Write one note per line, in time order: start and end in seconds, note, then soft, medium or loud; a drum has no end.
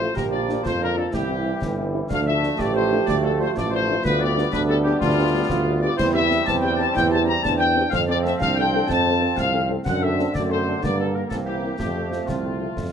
0.00 0.13 F3 medium
0.00 0.06 F3 medium
0.00 0.12 A3 medium
0.00 0.06 A3 medium
0.00 0.15 F4 medium
0.00 0.13 C5 medium
0.00 0.14 C5 loud
0.15 0.57 A#1 medium
0.15 1.10 F3 medium
0.15 1.11 A#3 medium
0.15 0.61 G4 medium
0.15 0.23 A#4 medium
0.15 0.23 A#4 loud
0.15 concert bass drum medium
0.15 snare medium
0.31 0.38 F3 medium
0.31 0.38 D4 medium
0.31 0.38 F4 medium
0.31 0.62 D5 loud
0.31 0.63 D5 medium
0.49 0.55 F3 medium
0.49 0.55 D4 medium
0.49 0.55 F4 medium
0.49 snare medium
0.63 1.05 F2 medium
0.63 1.14 F4 medium
0.63 0.71 C5 loud
0.63 0.80 C5 loud
0.63 concert bass drum medium
0.63 snare medium
0.80 0.86 F3 medium
0.80 0.86 D4 medium
0.80 0.86 F4 medium
0.80 0.96 A#4 medium
0.80 0.97 A#4 loud
0.96 1.02 F3 medium
0.96 1.02 D4 medium
0.96 1.02 F4 medium
0.96 1.13 A4 medium
0.96 1.04 A4 medium
1.13 1.54 C2 medium
1.13 2.11 E3 medium
1.13 2.10 G3 medium
1.13 1.62 E4 medium
1.13 1.90 G4 medium
1.13 1.90 G4 loud
1.13 concert bass drum medium
1.13 snare medium
1.29 1.35 C4 medium
1.29 1.35 E4 medium
1.44 1.51 C4 medium
1.44 1.51 E4 medium
1.61 2.02 G1 medium
1.61 2.08 E4 medium
1.61 concert bass drum medium
1.61 snare medium
1.77 1.83 C4 medium
1.77 1.83 E4 medium
1.93 2.00 C4 medium
1.93 1.99 E4 medium
2.09 2.50 D2 medium
2.09 4.05 F3 medium
2.09 4.01 A3 medium
2.09 2.55 D4 medium
2.09 2.25 F5 loud
2.09 2.18 F5 loud
2.09 concert bass drum medium
2.09 snare medium
2.09 crash soft
2.26 2.32 A3 medium
2.26 2.32 D4 medium
2.26 2.32 F4 medium
2.26 2.57 E5 loud
2.26 2.57 E5 medium
2.43 2.49 A3 medium
2.43 2.49 D4 medium
2.43 2.49 F4 medium
2.43 snare medium
2.58 2.99 A1 medium
2.58 3.55 G4 loud
2.58 2.75 D5 loud
2.58 concert bass drum medium
2.58 snare medium
2.73 2.81 A3 medium
2.73 2.81 D4 medium
2.73 2.81 F4 medium
2.73 3.04 C5 medium
2.73 3.06 C5 loud
2.92 2.98 A3 medium
2.92 2.98 D4 medium
2.92 2.98 F4 medium
3.06 3.48 D2 medium
3.06 3.22 D5 loud
3.06 3.15 D5 loud
3.06 concert bass drum medium
3.06 snare medium
3.24 3.29 A3 medium
3.24 3.29 D4 medium
3.24 3.30 F4 medium
3.24 3.31 A4 loud
3.24 3.40 A4 medium
3.39 3.45 A3 medium
3.39 3.45 D4 medium
3.39 3.45 F4 medium
3.39 3.55 C5 medium
3.39 3.48 C5 loud
3.54 3.96 A1 medium
3.54 4.52 F4 medium
3.54 3.72 D5 medium
3.54 3.72 D5 loud
3.54 concert bass drum medium
3.54 snare medium
3.71 3.78 A3 medium
3.71 3.78 D4 medium
3.71 3.78 F4 medium
3.71 4.01 C5 medium
3.71 4.03 C5 loud
3.88 3.94 A3 medium
3.88 3.94 D4 medium
3.88 3.94 F4 medium
4.04 4.45 D2 medium
4.04 5.97 G3 medium
4.04 5.99 B3 medium
4.04 4.19 B4 loud
4.04 concert bass drum medium
4.04 snare medium
4.20 4.28 B3 medium
4.20 4.27 D4 medium
4.20 4.28 G4 medium
4.20 4.53 D5 loud
4.20 4.51 D5 loud
4.37 4.43 B3 medium
4.37 4.43 D4 medium
4.37 4.43 G4 medium
4.37 snare medium
4.52 4.93 D2 medium
4.52 4.98 D4 loud
4.52 4.60 B4 loud
4.52 concert bass drum medium
4.52 snare medium
4.68 4.75 B3 medium
4.68 4.75 D4 medium
4.68 4.75 G4 medium
4.68 4.76 A4 medium
4.68 4.76 A4 loud
4.83 4.91 B3 medium
4.83 4.91 D4 medium
4.83 4.99 G4 loud
4.83 4.91 G4 medium
4.83 4.93 G4 medium
4.99 5.42 D2 medium
4.99 5.47 D4 loud
4.99 5.77 F4 loud
4.99 5.78 F4 loud
4.99 concert bass drum medium
4.99 snare medium
5.17 5.23 B3 medium
5.17 5.23 D4 medium
5.17 5.23 G4 medium
5.34 5.40 B3 medium
5.34 5.40 D4 medium
5.34 5.40 G4 medium
5.50 5.87 D2 medium
5.50 5.99 F4 loud
5.50 concert bass drum medium
5.50 snare medium
5.66 5.72 B3 medium
5.66 5.72 D4 medium
5.66 5.72 G4 medium
5.81 5.88 B3 medium
5.81 5.88 D4 medium
5.81 5.88 G4 medium
5.81 5.89 D5 loud
5.81 5.98 D5 loud
5.96 6.39 E2 loud
5.96 7.74 G3 medium
5.96 7.74 C4 medium
5.96 6.46 E4 loud
5.96 6.04 C5 loud
5.96 6.13 C5 loud
5.96 concert bass drum medium
5.96 snare medium
5.96 crash medium
6.13 6.20 C4 medium
6.13 6.20 G4 medium
6.13 6.46 E5 loud
6.13 6.45 E5 loud
6.30 6.36 C4 medium
6.30 6.36 G4 medium
6.30 snare medium
6.45 6.87 E2 medium
6.45 6.97 C4 medium
6.45 6.53 A5 loud
6.45 6.54 A5 loud
6.45 concert bass drum medium
6.45 snare medium
6.61 6.68 C4 medium
6.61 6.68 G4 medium
6.61 6.77 G5 medium
6.61 6.78 G5 loud
6.77 6.84 C4 medium
6.77 6.84 G4 medium
6.77 6.85 A5 loud
6.77 6.95 A5 loud
6.94 7.36 E2 loud
6.94 7.31 E4 loud
6.94 7.10 G5 loud
6.94 7.03 G5 loud
6.94 concert bass drum medium
6.94 snare medium
7.10 7.16 C4 medium
7.10 7.17 G4 medium
7.10 7.18 A5 medium
7.10 7.20 A5 loud
7.25 7.32 C4 medium
7.25 7.32 G4 medium
7.25 7.33 A#5 loud
7.25 7.43 A#5 loud
7.43 7.84 E2 medium
7.43 7.90 D4 loud
7.43 7.50 A5 loud
7.43 7.51 A5 loud
7.43 concert bass drum medium
7.43 snare medium
7.58 7.65 C4 medium
7.58 7.65 G4 medium
7.58 7.89 G5 loud
7.76 7.82 C4 medium
7.76 7.82 G4 medium
7.90 8.32 F2 loud
7.90 9.82 F3 medium
7.90 9.81 C4 medium
7.90 8.43 C4 medium
7.90 7.98 F5 loud
7.90 8.00 F5 loud
7.90 concert bass drum medium
7.90 snare medium
8.07 8.14 C4 medium
8.07 8.14 A4 medium
8.07 8.23 D5 medium
8.07 8.17 D5 loud
8.23 8.31 C4 medium
8.23 8.30 A4 medium
8.23 8.40 E5 medium
8.23 8.32 E5 medium
8.23 snare medium
8.38 8.81 C2 medium
8.38 8.90 D4 medium
8.38 8.46 F5 loud
8.38 8.56 F5 loud
8.38 concert bass drum medium
8.38 snare medium
8.55 8.64 C4 medium
8.55 8.63 A4 medium
8.55 8.86 G5 loud
8.55 8.87 G5 loud
8.73 8.79 C4 medium
8.73 8.80 A4 medium
8.88 9.29 F2 loud
8.88 9.58 C4 loud
8.88 9.37 A5 loud
8.88 9.35 A5 loud
8.88 concert bass drum medium
8.88 snare medium
9.05 9.11 C4 medium
9.05 9.11 A4 medium
9.21 9.27 C4 medium
9.21 9.27 A4 medium
9.37 9.78 C2 medium
9.37 9.69 F5 medium
9.37 9.68 F5 loud
9.37 concert bass drum medium
9.37 snare medium
9.53 9.59 C4 medium
9.53 9.59 A4 medium
9.69 9.75 C4 medium
9.69 9.75 A4 medium
9.84 10.26 F#2 medium
9.84 11.32 D3 medium
9.84 10.79 C4 medium
9.84 10.37 D4 medium
9.84 10.00 F#5 loud
9.84 concert bass drum medium
9.84 snare medium
9.84 crash soft
10.02 10.08 C4 medium
10.02 10.08 D4 medium
10.02 10.08 A4 medium
10.02 10.34 E5 medium
10.02 10.35 E5 loud
10.18 10.24 C4 medium
10.18 10.24 D4 medium
10.18 10.24 A4 medium
10.18 snare medium
10.34 10.75 F#2 medium
10.34 10.82 A3 medium
10.34 10.49 D5 medium
10.34 10.42 D5 loud
10.34 concert bass drum medium
10.34 snare medium
10.50 10.56 C4 medium
10.50 10.56 D4 medium
10.50 10.56 A4 medium
10.50 10.83 C5 medium
10.50 10.81 C5 loud
10.67 10.73 C4 medium
10.67 10.73 D4 medium
10.67 10.73 A4 medium
10.82 11.23 G2 medium
10.82 11.28 A#3 medium
10.82 11.80 A#3 medium
10.82 10.99 D5 loud
10.82 10.98 D5 loud
10.82 concert bass drum medium
10.82 snare medium
10.99 11.05 A#3 medium
10.99 11.05 D4 medium
10.99 11.05 G4 medium
10.99 11.06 A4 medium
10.99 11.14 A4 medium
11.13 11.21 A#3 medium
11.13 11.21 D4 medium
11.13 11.21 G4 medium
11.13 11.21 A#4 medium
11.13 11.31 A#4 medium
11.29 11.72 C2 medium
11.29 11.79 E3 medium
11.29 11.36 A4 loud
11.29 11.37 A4 medium
11.29 concert bass drum medium
11.29 snare medium
11.33 11.77 C4 medium
11.46 11.53 A#3 medium
11.46 11.54 C4 medium
11.46 11.53 E4 medium
11.46 11.76 G4 medium
11.46 11.77 G4 medium
11.63 11.69 A#3 medium
11.63 11.69 C4 medium
11.63 11.69 E4 medium
11.78 12.19 F2 medium
11.78 12.92 F3 medium
11.78 12.92 A3 medium
11.78 12.92 C4 medium
11.78 12.24 G4 medium
11.78 concert bass drum medium
11.78 snare medium
11.95 12.01 A3 medium
11.95 12.01 C4 medium
11.95 12.02 F4 medium
12.10 12.17 A3 medium
12.10 12.16 C4 medium
12.10 12.17 F4 medium
12.10 snare medium
12.26 12.68 C2 medium
12.26 12.92 F4 medium
12.26 concert bass drum medium
12.26 snare medium
12.44 12.50 A3 medium
12.44 12.50 C4 medium
12.44 12.50 F4 soft
12.60 12.66 A3 medium
12.60 12.67 C4 medium
12.60 12.66 F4 medium
12.77 12.92 F2 medium
12.77 concert bass drum medium
12.77 snare medium